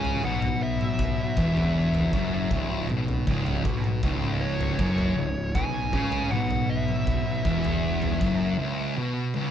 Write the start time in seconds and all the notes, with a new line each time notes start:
Already playing: C#2 C#3 G#5
0.05 floor tom
0.23 B1 B2 F#5, mid tom
0.42 floor tom, mid tom
0.62 E5
0.81 mid tom
0.99 kick, floor tom
1.37 E1 E2, kick
1.57 floor tom
1.94 floor tom
2.13 F#1 F#2, kick
2.51 C#1 C#2, kick, floor tom
2.89 B1 B2, mid tom
3.08 floor tom
3.27 C#1 C#2, kick, mid tom
3.46 floor tom, mid tom
3.65 B1 B2, kick
3.84 mid tom
4.03 C#1 C#2, kick, floor tom
4.41 C#5
4.61 floor tom
4.79 F#1 F#2, kick
4.98 floor tom
5.16 C#1 C#2
5.55 B1 B2 G#5, kick, floor tom
5.93 C#2 C#3, kick, mid tom
6.12 floor tom
6.31 B1 B2 F#5, mid tom
6.50 floor tom, mid tom
6.70 E5
6.88 mid tom
7.07 kick, floor tom
7.45 E1 E2, kick
7.64 floor tom
8.02 floor tom
8.21 F#1 F#2, kick
8.59 C#2
8.98 B2
9.34 C#2, high tom